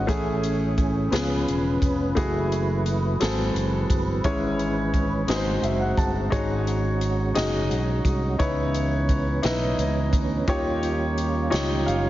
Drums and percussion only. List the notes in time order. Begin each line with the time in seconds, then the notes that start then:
0.09 kick, closed hi-hat
0.43 closed hi-hat
0.78 kick, closed hi-hat
1.12 snare, closed hi-hat
1.48 closed hi-hat
1.82 kick, closed hi-hat
2.17 kick, closed hi-hat
2.52 closed hi-hat
2.86 closed hi-hat
3.21 snare, closed hi-hat
3.56 closed hi-hat
3.90 kick, closed hi-hat
4.24 kick, closed hi-hat
4.59 closed hi-hat
4.94 kick, closed hi-hat
5.28 snare, closed hi-hat
5.64 closed hi-hat
5.97 kick, closed hi-hat
6.32 kick, closed hi-hat
6.67 closed hi-hat
7.01 closed hi-hat
7.35 snare, closed hi-hat
7.71 closed hi-hat
8.05 kick, closed hi-hat
8.40 kick, closed hi-hat
8.74 closed hi-hat
9.09 kick, closed hi-hat
9.43 snare, closed hi-hat
9.79 closed hi-hat
10.13 kick, closed hi-hat
10.48 kick, closed hi-hat
10.83 closed hi-hat
11.18 closed hi-hat
11.52 snare, closed hi-hat
11.88 closed hi-hat